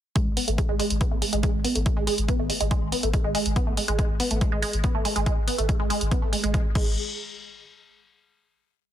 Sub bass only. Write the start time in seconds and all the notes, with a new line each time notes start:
0.26 G#1
0.48 G#1
0.69 G#1
0.90 G#1
1.12 G#1
1.33 G#1
1.54 G#1
1.75 G#1
1.97 G#1
2.18 G#1
2.39 G#1
2.60 G#1
2.82 G#1
3.03 G#1
3.24 G#1
3.45 G#1
3.67 G#1
3.88 G#1
4.09 G#1
4.31 G#1
4.52 G#1
4.73 G#1
4.95 G#1
5.16 G#1
5.37 G#1
5.58 G#1
5.80 G#1
6.01 G#1
6.22 G#1
6.44 G#1
6.65 G#1
6.75 G#1